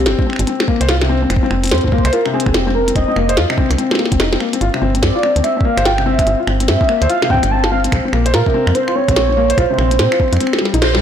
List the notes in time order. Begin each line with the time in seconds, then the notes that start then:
Already playing: G4
0.06 G1 C4, finger snap, snare, closed hi-hat
0.19 C4, kick
0.27 C4, finger snap
0.33 finger snap
0.36 G1 C4, finger snap, closed hi-hat
0.47 C4, closed hi-hat
0.60 C4, finger snap, snare
0.68 A#3, kick
0.81 C2 C5, finger snap, closed hi-hat
0.89 F4, snare, closed hi-hat
1.01 C3, finger snap, snare
1.09 C4
1.22 C4
1.30 F1 C4, finger snap, closed hi-hat
1.36 kick
1.43 C4
1.51 F1 C4, finger snap
1.64 C4, closed hi-hat
1.65 closed hi-hat
1.67 closed hi-hat
1.69 F2 C4 C5, finger snap, snare, closed hi-hat
1.75 closed hi-hat
1.78 closed hi-hat
1.81 C4, kick, closed hi-hat
1.88 kick
1.92 A#3, kick
1.98 kick
2.05 C2 C5, finger snap, closed hi-hat
2.13 F4 A#4, closed hi-hat
2.26 C3, finger snap
2.34 C4 G#4
2.40 closed hi-hat
2.46 F1 C4, finger snap, kick
2.54 C4 G4, snare, closed hi-hat
2.67 C4
2.75 C4 A#4
2.88 C4, closed hi-hat
2.95 F1 C4 D#5, finger snap, kick, closed hi-hat
3.08 C4
3.16 F1 A#3, finger snap
3.29 C5, closed hi-hat
3.37 F2 F4, snare, closed hi-hat
3.50 C3, finger snap
3.58 C4, kick
3.70 C2 C4, finger snap, closed hi-hat
3.78 C4, closed hi-hat
3.91 C4, finger snap, snare
3.95 A#3, snare
3.99 snare
4.06 snare
4.12 F1 C4, kick, closed hi-hat
4.20 D#4, finger snap, snare, closed hi-hat
4.33 C4, snare
4.40 A#3, finger snap
4.53 C4, closed hi-hat
4.61 G1 F4, closed hi-hat
4.74 C3, finger snap
4.82 G1 C4
4.95 C4, closed hi-hat
5.02 G2 C4 D5, finger snap, kick, snare, closed hi-hat
5.15 F4
5.23 C4, finger snap
5.36 D2 C4, closed hi-hat
5.44 C4 E5, finger snap, closed hi-hat
5.57 C4, kick
5.64 A#3 F5
5.77 G1 C5, finger snap, closed hi-hat
5.85 F4 G5, snare, closed hi-hat
5.98 C3, finger snap
6.06 C4 E5
6.19 C4, finger snap, kick, closed hi-hat
6.27 G1 C4, closed hi-hat
6.40 F4
6.47 G1 C4, finger snap
6.60 C4, closed hi-hat
6.68 G2 C4 E5, finger snap, snare, closed hi-hat
6.81 C4, kick
6.89 A#3, finger snap
7.02 D2 C5, closed hi-hat
7.09 F4 F5, closed hi-hat
7.22 C3, finger snap, snare
7.30 C4 G5, kick
7.34 kick
7.37 kick
7.43 G1 C4, finger snap, closed hi-hat
7.51 C4 A5
7.64 F4, finger snap, snare
7.71 C4 F5
7.84 C4, closed hi-hat
7.92 A#1 C4, finger snap, kick, closed hi-hat
8.05 C4
8.13 A#1 A#3, finger snap
8.26 C5, closed hi-hat
8.33 A#2 F4 A#4, finger snap, snare, closed hi-hat
8.46 C3, kick
8.54 C4
8.67 F2 C4, finger snap
8.75 C4 C5, closed hi-hat
8.88 F4, finger snap
8.96 C4 C#5
9.08 A#1 C4, finger snap, kick, closed hi-hat
9.16 C4 C#5, snare, closed hi-hat
9.29 C4
9.37 A#3
9.50 C5, closed hi-hat
9.58 A#1 F4 C5, finger snap, kick, closed hi-hat
9.70 C3
9.78 A#1 C4, finger snap
9.91 C4, closed hi-hat
9.99 A#2 C4, snare, closed hi-hat
10.12 F4, finger snap
10.20 C4, kick
10.32 F2 C4, finger snap, closed hi-hat
10.37 C4, finger snap
10.41 finger snap, closed hi-hat
10.47 finger snap
10.53 C4, finger snap, snare
10.59 G3, snare
10.65 snare
10.74 A#1 D#4, closed hi-hat
10.82 C5, finger snap, snare, closed hi-hat
10.94 A#1 G3, snare